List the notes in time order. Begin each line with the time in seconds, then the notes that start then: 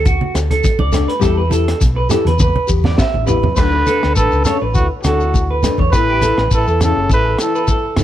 Already playing: D2
0.05 F#4, kick, closed hi-hat, shekere
0.21 high conga
0.34 D2 A4, muted nylon-string guitar stroke, cross-stick, closed hi-hat, shekere
0.51 A4, closed hi-hat, high conga
0.64 kick, closed hi-hat, shekere
0.79 C#2 D5, high conga
0.92 A3 D4 A4, cross-stick, closed hi-hat, low conga, shekere
1.08 B4, closed hi-hat
1.19 E2 G3 B3 E4 G4 A4, kick, cross-stick, closed hi-hat, shekere
1.37 B4
1.49 B3 E4 G4 A4, closed hi-hat, high conga, shekere
1.68 cross-stick, closed hi-hat
1.81 B1, kick, closed hi-hat, shekere
1.96 B4
2.09 B3 E4 G4 A4, cross-stick, closed hi-hat, low conga, shekere
2.25 E2 B4, closed hi-hat, high conga
2.39 B4, kick, high tom, shekere
2.56 high conga
2.67 E2 B3 G4, kick, shekere
2.84 D5, snare, high conga, low conga
2.98 E5, kick, snare, shekere
3.14 A1, high conga
3.26 B3 E4 G4 B4, floor tom, low conga, shekere
3.43 floor tom, low conga
3.56 D2 D3 F#3 A3 D4 A4 B4, kick, cross-stick, crash, shekere
3.86 A3 D4 A4, closed hi-hat, high conga, shekere
4.03 D2, cross-stick
4.15 A1 D3 A4 B4, kick, shekere
4.32 C#2, shekere
4.45 C#3 A3 D4 A4 C#5, cross-stick, closed hi-hat, low conga, shekere
4.62 A1 B4
4.74 D2 A2 F#4, kick, shekere
5.03 D2 A2 D4 F#4 A4, muted nylon-string guitar stroke, cross-stick, closed hi-hat, high conga, shekere
5.20 shekere
5.34 kick, shekere
5.51 B4
5.63 A3 D4 A4, cross-stick, closed hi-hat, high conga, low conga, shekere
5.78 E2 C#5, kick, high conga
5.92 A1 E3 B3 E4 A4 B4, kick, cross-stick, shekere
6.10 G4
6.21 B3 E4 A4, closed hi-hat, high conga, shekere
6.38 A1 B4, cross-stick
6.51 A1 E3 A4 B4, kick, shekere
6.67 E2 A4, shekere
6.80 C#3 B3 E4 A4, cross-stick, closed hi-hat, low conga, shekere
6.96 F#1
7.09 A1 E3 A4 B4, kick, shekere
7.26 A4
7.38 E3 B3 E4 A4, cross-stick, closed hi-hat, shekere
7.55 B4, shekere
7.68 A4, kick, shekere
7.96 F#1 B3 E4 A4, cross-stick, closed hi-hat, high conga, low conga, shekere